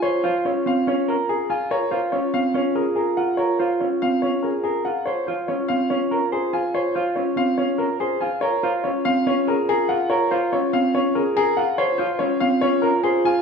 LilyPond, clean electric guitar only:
\new Staff \with { instrumentName = "Clean electric guitar" } { \time 4/4 \key des \major \tempo 4 = 143 c''8 f'8 des'8 c'8 des'8 bes'8 r8 f'8 | bes'8 f'8 des'8 c'8 des'8 aes'8 bes'8 f'8 | bes'8 f'8 des'8 c'8 des'8 aes'8 bes'8 f'8 | c''8 f'8 des'8 c'8 des'8 bes'8 c''8 f'8 |
c''8 f'8 des'8 c'8 des'8 bes'8 c''8 f'8 | bes'8 f'8 des'8 c'8 des'8 aes'8 bes'8 f'8 | bes'8 f'8 des'8 c'8 des'8 aes'8 bes'8 f'8 | c''8 f'8 des'8 c'8 des'8 bes'8 c''8 f'8 | }